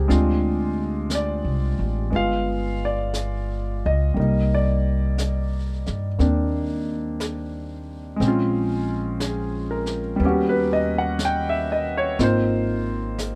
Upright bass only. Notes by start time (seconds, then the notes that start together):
0.10 D2
1.45 C2
1.79 A1
2.13 G1
3.86 C#2
4.17 C2
5.88 G2
6.19 D#2
8.20 A#1
10.20 D#2
12.19 G#1